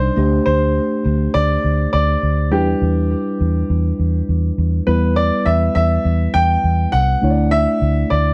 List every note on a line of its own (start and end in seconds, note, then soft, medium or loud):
0.00 0.17 G3 soft
0.00 0.16 D4 soft
0.00 0.17 D#4 soft
0.00 0.44 C5 loud
0.00 0.18 D5 soft
0.16 0.38 D2 loud
0.16 2.48 A3 medium
0.16 2.48 D4 medium
0.16 2.49 G4 medium
0.16 2.49 C5 medium
0.46 0.78 D2 medium
0.46 1.30 C5 medium
1.05 1.27 D2 loud
1.34 1.56 D2 loud
1.34 1.89 D5 loud
1.64 1.85 D2 medium
1.93 2.15 D2 loud
1.93 2.48 D5 medium
2.23 2.52 D2 medium
2.51 2.74 E2 loud
2.51 4.83 G3 medium
2.51 4.83 D4 medium
2.51 4.84 E4 medium
2.51 4.24 G4 medium
2.51 4.84 B4 medium
2.82 3.14 E2 medium
3.41 3.62 E2 medium
3.70 3.91 E2 loud
3.99 4.21 E2 medium
4.29 4.50 E2 medium
4.58 4.79 E2 loud
4.87 5.30 E2 medium
4.87 7.18 G3 medium
4.87 7.19 B3 medium
4.87 7.19 E4 medium
4.87 5.15 B4 medium
4.87 7.20 B4 medium
5.16 5.47 D5 medium
5.46 5.67 E2 medium
5.46 5.74 E5 medium
5.75 5.97 E2 medium
5.75 6.36 E5 medium
6.05 6.26 E2 loud
6.34 6.56 E2 medium
6.34 6.95 G5 loud
6.64 6.85 E2 loud
6.92 7.15 C2 medium
6.92 7.53 F#5 loud
7.22 7.65 D2 medium
7.22 8.34 A3 medium
7.22 8.34 D4 medium
7.22 8.34 E4 medium
7.22 7.30 C#5 medium
7.30 8.34 D5 medium
7.51 8.12 E5 loud
7.82 8.03 D2 loud
8.10 8.32 D2 medium
8.10 8.34 D5 medium